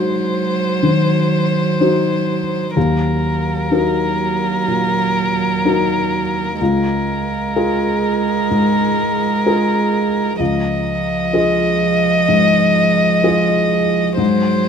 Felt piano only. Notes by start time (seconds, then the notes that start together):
Already playing: G#2 D#4 F#4 C5
0.83 D#3
1.81 D#4 F#4 C5
2.76 D#2
3.71 D#4 F#4 A#4
4.68 A#2
5.65 D#4 F#4 A#4
6.61 C#2
7.56 F4 G#4 A#4
8.51 G#2
9.46 F4 G#4 A#4
10.40 C#2
11.33 F4 G#4 D#5
12.28 G#2
13.23 F4 G#4 D#5
14.17 G#2